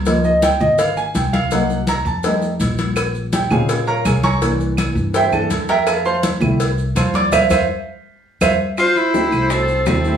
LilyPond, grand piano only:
<<
  \new Staff \with { instrumentName = "Grand piano" } { \time 4/4 \key f \major \tempo 4 = 165 r8 ees''8 g''8 ees''8 f''8 aes''8 g''8 f''8 | ges''4 bes''8 a''4 r4. | r4 <g' g''>8 <aes' des'' f'' aes''>4 <bes' des'' f'' bes''>8 <aes' des'' f'' aes''>8 <des'' aes'' bes'' des'''>8 | r2 <g' c'' e'' g''>8 <a' a''>4 <bes' e'' g'' bes''>8 |
<a' e'' f'' a''>8 <c'' f'' a'' c'''>8 r2 <c'' f'' a'' c'''>8 <d'' d'''>8 | <c'' e'' f''>8 <c'' e'' f''>8 r2 <c'' e'' f''>8 r8 | r4 <a c' e' g'>4. r8 <a c' e' g'>8 <a c' e' g'>8 | }
  \new Staff \with { instrumentName = "Grand piano" } { \time 4/4 \key f \major <f bes ees'>8 r2. r8 | <ges bes ees'>8 r4. <g a ees'>8 r4. | r4. <des aes c'>8 r2 | <e bes d'>2~ <e bes d'>8 <e bes d'>8 r4 |
r4. <g a e'>8 r2 | r1 | r1 | }
>>